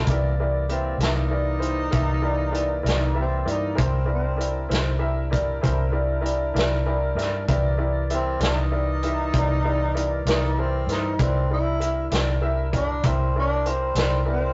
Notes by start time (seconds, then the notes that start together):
0.07 C2 E3 A#3 E4 G4 A#4 D5, kick, closed hi-hat
0.40 E4 G4 A#4 D5
0.69 C4 E4 G4 A#4 E5, closed hi-hat
0.98 C2 E4 G4 A#4 E5, closed hi-hat
1.03 D#4, snare
1.30 E4 G4 A#4 D5
1.59 E4 G4 A#4 C5, closed hi-hat
1.91 C2 E4 G4 A#4 E5, kick, closed hi-hat
2.22 E4 G4 A#4 D5
2.52 E4 G4 A#4 D5, closed hi-hat
2.83 C2 E4 G4 A#4 D5, closed hi-hat
2.88 D#4, snare
3.13 E4 G4 A#4 E5
3.20 C4
3.45 G2 E4 G4 A#4 D5, closed hi-hat
3.51 D#4
3.75 C2 D4 E4 G4 A#4 C5, kick, closed hi-hat
3.83 C4
4.05 E4 G4 A#4 D5
4.14 C4
4.37 E4 G4 A#4 D5, closed hi-hat
4.69 C2 E4 G4 A#4 C5, closed hi-hat
4.73 snare
4.99 E4 G4 A#4 E5
5.30 E4 G4 A#4 D5, kick, closed hi-hat
5.61 C2 E4 G4 A#4 C5, kick, closed hi-hat
5.91 E4 G4 A#4 D5
6.21 E4 G4 A#4 D5
6.26 closed hi-hat
6.54 C2 E4 G4 A#4 D5, closed hi-hat
6.59 snare
6.86 E4 G4 A#4 D5
7.15 G2 E4 G4 A#4 D5, closed hi-hat
7.21 snare
7.48 C2 E3 E4 G4 A#4 D5, kick, closed hi-hat
7.78 E4 G4 A#4 D5
8.10 C4 E4 G4 A#4 E5, closed hi-hat
8.39 C2 E4 G4 A#4 D5, snare, closed hi-hat
8.44 D#4
8.71 E4 G4 A#4 D5
9.02 E4 G4 A#4 E5, closed hi-hat
9.32 C2 E4 G4 A#4 D5, kick, closed hi-hat
9.64 E4 G4 A#4 D5
9.94 E4 G4 A#4 D5, closed hi-hat
10.25 C2 E4 G4 A#4 D5, snare, closed hi-hat
10.29 D#4
10.57 C4 E4 G4 A#4 C5
10.87 G2 E4 G4 A#4 C5, closed hi-hat
10.91 D#4, snare
11.19 C2 C4 D#4 E4 F4 G4 A#4 B4 D5, kick, closed hi-hat
11.50 D4 E4 G4 A#4 D5
11.80 E4 G4 A#4 E5, closed hi-hat
12.10 C2 E4 G4 A#4 D5, snare, closed hi-hat
12.41 E4 G4 A#4 E5
12.72 E4 G4 A#4 D5, kick, closed hi-hat
12.76 D4
13.03 C2 C4 E4 G4 A#4 E5, kick, closed hi-hat
13.36 D4 E4 G4 A#4 D5
13.65 C4 E4 G4 A#4 C5, closed hi-hat
13.95 C2 E4 G4 A#4 D5, snare, closed hi-hat
14.26 E4 G4 A#4 D5
14.32 C4